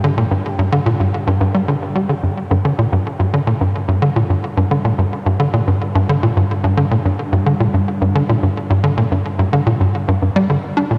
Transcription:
<<
  \new Staff \with { instrumentName = "Synth texture" } { \time 4/4 \key c \dorian \tempo 4 = 109 <g' g''>1 | \key g \minor r1 | r1 | r1 |
r1 | }
  \new Staff \with { instrumentName = "Analog synth bass" } { \clef bass \time 4/4 \key c \dorian d16 bes,16 g,16 r16 g,16 d16 bes,16 g,16 r16 g,16 g,16 g16 d16 r16 g16 d16 | \key g \minor g,16 r16 g,16 d16 bes,16 g,16 r16 g,16 d16 bes,16 g,16 r16 g,16 d16 bes,16 g,16 | r16 g,16 d16 bes,16 g,16 r16 g,16 d16 bes,16 g,16 r16 g,16 d16 bes,16 g,16 r16 | g,16 d16 bes,16 g,16 r16 g,16 d16 bes,16 g,16 r16 g,16 d16 bes,16 g,16 r16 g,16 |
d16 bes,16 g,16 r16 g,16 d16 bes,16 g,16 r16 g,16 g,16 g16 d16 r16 d'16 bes,16 | }
  \new Staff \with { instrumentName = "Synth drone" } { \clef bass \time 4/4 \key c \dorian g,1 | \key g \minor g,1~ | g,1~ | g,1~ |
g,1 | }
>>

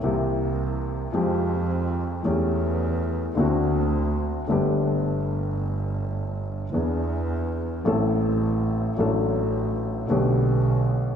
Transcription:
<<
  \new Staff \with { instrumentName = "Upright piano" } { \time 4/4 \key g \mixolydian \tempo 4 = 107 <c, c e bes c' g'>2 <f, f aes c' g'>2 | <e, e a cis' g'>2 <d, d a c' fis'>2 | <g,, g, d a b g'>1 | <e, e b d' gis'>2 <a,, a, e a c' a'>2 |
<a,, a, fis a d' a'>2 <b,, b, d a b g'>2 | }
  \new Staff \with { instrumentName = "Double bass" } { \clef bass \time 4/4 \key g \mixolydian c,2 f,2 | e,2 d,2 | g,,1 | e,2 a,,2 |
a,,2 b,,2 | }
>>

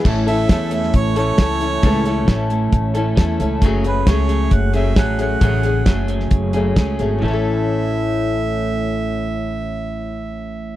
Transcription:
<<
  \new Staff \with { instrumentName = "Harmonica" } { \time 4/4 \key a \major \tempo 4 = 134 r8 e''4 e''8 cis''8 cis''4.~ | cis''4. r2 r8 | r8 b'8 cis''4 fis''8 e''8 fis''8 fis''8~ | fis''4. r2 r8 |
e''1~ | e''1 | }
  \new Staff \with { instrumentName = "Steel-string acoustic guitar" } { \time 4/4 \key a \major <a, e a cis' e' a'>8 <a cis' e' a'>8 <a cis' e' a'>4. <a cis' e' a'>8 <a cis' e' a'>8 <a cis' e' a'>8 | <a, e a cis' e' a'>8 <a cis' e' a'>8 <a cis' e' a'>4. <a cis' e' a'>8 <a cis' e' a'>8 <a cis' e' a'>8 | <fis, cis fis a cis' gis'>8 <fis a cis' gis'>8 <fis a cis' gis'>4. <fis a cis' gis'>8 <fis a cis' gis'>8 <fis a cis' gis'>8 | <fis, cis fis a cis' gis'>8 <fis a cis' gis'>8 <fis a cis' gis'>4. <fis a cis' gis'>8 <fis a cis' gis'>8 <fis a cis' gis'>8 |
<a, e a cis' e' a'>1~ | <a, e a cis' e' a'>1 | }
  \new Staff \with { instrumentName = "Clean electric guitar" } { \time 4/4 \key a \major <a, e a cis' a'>8 <a cis' a'>8 <a, e a cis' a'>8 <a cis' a'>4 <a cis' a'>8 <e a cis' a'>4 | <a, e a cis' a'>8 <a cis' a'>8 <a, e a cis' a'>8 <a cis' a'>4 <a cis' a'>8 <e a cis' a'>4 | <fis, cis fis a cis' gis'>8 <fis a cis' gis'>8 <fis, cis fis a cis' gis'>8 <fis a cis' gis'>4 <fis a cis' gis'>8 <fis a cis' gis'>4 | <fis, cis fis a cis' gis'>8 <fis a cis' gis'>8 <fis, cis fis a cis' gis'>8 <fis a cis' gis'>4 <fis a cis' gis'>8 <fis a cis' gis'>4 |
<a, e a cis' a'>1~ | <a, e a cis' a'>1 | }
  \new Staff \with { instrumentName = "Upright bass" } { \clef bass \time 4/4 \key a \major a,,4 e,4 a,,4 cis,4 | cis,4 a,,4 a,,4 e,8 cis,8 | fis,,4 cis,4 fis,,4 r4 | a,,4 fis,,4 fis,,4 cis,8 gis,,8 |
a,,1~ | a,,1 | }
  \new DrumStaff \with { instrumentName = "Drums" } \drummode { \time 4/4 <cymc bd>8 hh8 <hh bd sn>8 hh16 sn16 <hh bd>8 hh8 <hh bd sn>8 hh8 | <hh bd>8 hh8 <hh bd sn>8 hh8 <hh bd>8 hh8 <hh bd sn>8 hh8 | <hh bd>8 hh8 <hh bd sn>8 hh8 <hh bd>8 hh8 <hh bd sn>8 hh8 | <hh bd>8 hh8 <hh bd sn>8 hh16 sn16 <hh bd>8 hh8 <hh bd sn>8 hh8 |
r4 r4 r4 r4 | r4 r4 r4 r4 | }
>>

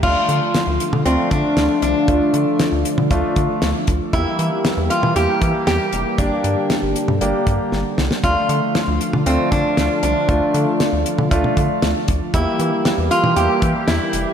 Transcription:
<<
  \new Staff \with { instrumentName = "Resonator guitar played with a steel bar" } { \time 4/4 \key d \minor \tempo 4 = 117 f'2 c'8 d'4 d'8~ | d'4 r2. | e'4. f'8 g'4 g'4 | d'4. r2 r8 |
f'2 c'8 d'4 d'8~ | d'4 r2. | e'4. f'8 g'4 e'4 | }
  \new Staff \with { instrumentName = "Grand piano" } { \time 4/4 \key d \minor <a d' f'>4 r4 <a d' f'>4 r4 | <a d' f'>4 r4 <a d' f'>4 r4 | <bes e' g'>4 r4 <bes e' g'>4 r4 | <bes d' g'>4 r4 <bes d' g'>4 r4 |
<a d' f'>4 r4 <a d' f'>4 r4 | <a d' f'>4 r4 <a d' f'>4 r4 | <bes e' g'>4 r4 <bes e' g'>4 r4 | }
  \new Staff \with { instrumentName = "Analog synth pad" } { \clef bass \time 4/4 \key d \minor << { <f a f'>1~ | <f a f'>1 | <g bes g'>1~ | <g bes g'>1 |
<f a f'>1~ | <f a f'>1 | <g bes g'>1 | } \\ { d1~ | d1 | e1 | d1~ |
d1~ | d1 | e1 | } >> }
  \new Staff \with { instrumentName = "Analog synth bass" } { \clef bass \time 4/4 \key d \minor d,16 r16 d16 r8 d,16 r16 d16 d,16 r16 d16 r16 d,16 r16 c,16 r16 | d,16 r16 d16 r8 d,16 r16 d16 d,16 r16 d16 r16 d,16 r16 d,16 r16 | e,16 r16 e16 r8 e,16 r16 e16 e,16 r16 e16 r16 e,16 r16 f,,16 r16 | g,,16 r16 g,16 r8 g,,16 r16 g,16 g,,16 r16 g,16 r16 g,,16 r16 c,16 r16 |
d,16 r16 d16 r8 d,16 r16 d16 d,16 r16 d16 r16 d,16 r16 c,16 r16 | d,16 r16 d16 r8 d,16 r16 d16 d,16 r16 d16 r16 d,16 r16 d,16 r16 | e,16 r16 e16 r8 e,16 r16 e16 e,16 r16 e16 r16 e,16 r16 f,,16 r16 | }
  \new DrumStaff \with { instrumentName = "Drums" } \drummode { \time 4/4 <cymc bd>8 hh8 <hh sn>8 hh16 toml16 hh8 <hh bd>8 <hh sn>8 hh8 | <hh bd>8 hh8 <hh sn>8 hh16 toml16 <hh bd>8 <hh bd>8 <hh sn>8 <hh bd>8 | <hh bd>8 hh8 <hh sn>8 hh16 toml16 hh8 <hh bd>8 <hh sn>8 hh8 | <hh bd>8 hh8 <hh sn>8 hh16 toml16 hh8 <hh bd>8 sn8 sn16 sn16 |
<hh bd>8 hh8 <hh sn>8 hh16 toml16 hh8 <hh bd>8 <hh sn>8 hh8 | <hh bd>8 hh8 <hh sn>8 hh16 toml16 <hh bd>16 toml16 <hh bd>8 <hh sn>8 <hh bd>8 | <hh bd>8 hh8 <hh sn>8 hh16 toml16 hh8 <hh bd>8 <hh sn>8 hh8 | }
>>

